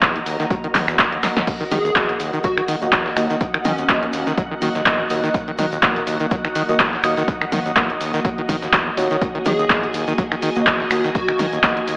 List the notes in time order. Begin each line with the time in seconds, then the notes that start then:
Already playing: A#3 F#4 D#5 A#5
0.02 E2, kick, snare, clap, closed hi-hat, shaker
0.15 D#2, closed hi-hat
0.26 D#2, closed hi-hat, open hi-hat, shaker
0.40 D#3, snare, closed hi-hat, shaker
0.50 F#3, kick, closed hi-hat, shaker
0.64 D#3, closed hi-hat
0.75 D#2, kick, clap, closed hi-hat, open hi-hat, mid tom, shaker
0.88 E2, finger snap, snare, closed hi-hat, shaker
0.99 D#1, kick, snare, clap, closed hi-hat, shaker
1.12 D#2, closed hi-hat
1.23 D#2, snare, closed hi-hat, open hi-hat, shaker
1.36 D#2, snare, closed hi-hat, mid tom, shaker
1.47 D#2 A#3 F#4 D#5 F#5, kick, closed hi-hat, crash, shaker
1.61 D#3, closed hi-hat
1.71 D#3 G#4, closed hi-hat, open hi-hat, mid tom, shaker
1.85 D#2, closed hi-hat, shaker
1.95 E2 A#3 F#4 D#5, kick, snare, clap, closed hi-hat, shaker
2.09 D#2, closed hi-hat
2.20 D#2, closed hi-hat, open hi-hat, shaker
2.33 D#3, closed hi-hat, shaker
2.43 F#3 F#4, kick, closed hi-hat, shaker
2.57 D#3, finger snap, closed hi-hat
2.68 D#3, closed hi-hat, open hi-hat, shaker
2.82 D#2 A#3 F#4 D#5, closed hi-hat, shaker
2.92 E2, kick, snare, clap, closed hi-hat, shaker
3.06 D#2, snare
3.16 D#2 A#3 F#4 D#5, finger snap, closed hi-hat, open hi-hat, shaker
3.30 D#3, snare, closed hi-hat, shaker
3.41 D#2, kick, closed hi-hat, shaker
3.54 D#3, finger snap, closed hi-hat
3.65 D#3 C#4, closed hi-hat, open hi-hat, mid tom, shaker
3.78 D#2, closed hi-hat, shaker
3.89 E2 A#3 F#4 D#5, kick, snare, clap, closed hi-hat, shaker
4.03 D#2, closed hi-hat
4.13 D#2, closed hi-hat, open hi-hat, shaker
4.27 D#3, snare, closed hi-hat, shaker
4.38 F#3, kick, closed hi-hat, shaker
4.51 D#3
4.62 D#3 A#3 F#4 D#5, closed hi-hat, open hi-hat, shaker
4.75 D#2, snare, closed hi-hat, shaker
4.85 E2 A#3 F#4 D#5, kick, snare, clap, closed hi-hat, shaker
4.99 D#2
5.10 D#2 A#3 F#4 D#5, closed hi-hat, open hi-hat, shaker
5.24 D#3, snare, closed hi-hat, shaker
5.34 D#2, kick, closed hi-hat, shaker
5.48 D#3, closed hi-hat
5.58 D#3, closed hi-hat, open hi-hat, mid tom, shaker
5.72 D#2, closed hi-hat, shaker
5.83 E2 A#3 F#4 D#5, kick, snare, clap, closed hi-hat, shaker
5.96 D#2, closed hi-hat
6.07 D#2, closed hi-hat, open hi-hat, shaker
6.20 D#3, closed hi-hat, shaker
6.31 F#3, kick, closed hi-hat, shaker
6.45 D#3, finger snap, closed hi-hat
6.55 D#3, closed hi-hat, open hi-hat, shaker
6.69 D#2 A#3 F#4 D#5, closed hi-hat, shaker
6.79 E2, kick, snare, clap, closed hi-hat, shaker
6.93 D#2, snare
7.03 D#2 A#3 F#4 D#5, finger snap, closed hi-hat, open hi-hat, shaker
7.17 D#3, snare, closed hi-hat, shaker
7.28 D#2, kick, closed hi-hat, shaker
7.41 D#3, finger snap, closed hi-hat
7.52 D#3, closed hi-hat, open hi-hat, mid tom, shaker
7.66 D#2, closed hi-hat, shaker
7.76 E2 A#3 F#4 D#5, kick, snare, clap, closed hi-hat, shaker
7.90 D#2, closed hi-hat
8.01 D#2, closed hi-hat, open hi-hat, shaker
8.14 D#3, snare, closed hi-hat, shaker
8.25 F#3, kick, closed hi-hat
8.38 D#3, closed hi-hat
8.49 D#3, kick, closed hi-hat, open hi-hat, mid tom, shaker
8.62 D#2, snare, closed hi-hat, shaker
8.73 E2, kick, snare, clap, closed hi-hat, shaker
8.87 D#2
8.97 D#2 A#3 F#4 C#5, closed hi-hat, open hi-hat, shaker
9.11 D#3, snare, closed hi-hat, shaker
9.21 D#2 G#5, kick, closed hi-hat, shaker
9.35 D#3, closed hi-hat
9.45 D#3 G#4, closed hi-hat, open hi-hat, mid tom, shaker
9.59 D#2, closed hi-hat, shaker
9.70 E2 A#3 F#4 D#5, kick, snare, clap, closed hi-hat, shaker
9.83 D#2, closed hi-hat
9.94 D#2, closed hi-hat, open hi-hat, shaker
10.08 D#3, closed hi-hat, shaker
10.18 F#3, kick, closed hi-hat, shaker
10.32 D#3, finger snap, closed hi-hat
10.42 D#3, closed hi-hat, open hi-hat, shaker
10.55 D#2 A#3 F#4 D#5, closed hi-hat, shaker
10.67 E2, kick, snare, clap, closed hi-hat, shaker
10.80 D#2, snare
10.90 D#2 A#3 F#4 D#5, finger snap, closed hi-hat, open hi-hat, shaker
11.04 D#3, snare, closed hi-hat, shaker
11.15 D#2 F#4, kick, closed hi-hat, shaker
11.28 D#3, finger snap, closed hi-hat
11.39 D#3, closed hi-hat, open hi-hat, mid tom, shaker
11.53 D#2, closed hi-hat, shaker
11.63 E2 A#3 F#4 D#5, kick, snare, clap, closed hi-hat, shaker
11.77 D#2, closed hi-hat
11.88 D#2, closed hi-hat, open hi-hat, shaker